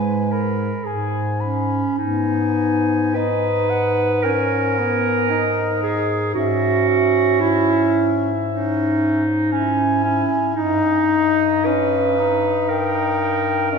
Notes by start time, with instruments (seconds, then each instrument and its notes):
Already playing: bass clarinet G#2, tenor saxophone G#3, clarinet B4 G#5
0.32 clarinet A#4 B5
0.84 bass clarinet G#2, clarinet G#4 G#5
1.41 clarinet C#4 B5
1.98 bass clarinet G#2, tenor saxophone B3, clarinet D#4 G#5
3.14 tenor saxophone D#4, clarinet B4 D#5
3.70 clarinet F#5
4.23 tenor saxophone C#4, clarinet A#4 G#5
4.79 tenor saxophone B3
5.31 tenor saxophone D#4, clarinet D#5
5.82 clarinet G#4
6.35 bass clarinet G#2, tenor saxophone C#4, clarinet F#4 E5
6.89 clarinet E5
7.40 clarinet E4
8.47 tenor saxophone C#4, clarinet D#4
9.52 clarinet C#4 G#5, tenor saxophone E4
10.04 clarinet C#4
10.55 bass clarinet G2, clarinet D#4 D#5, tenor saxophone D#4
11.65 tenor saxophone C#4, clarinet B4
12.19 tenor saxophone D#4
12.69 clarinet A#4 G5
13.21 clarinet G5
13.72 tenor saxophone C#4, clarinet D#5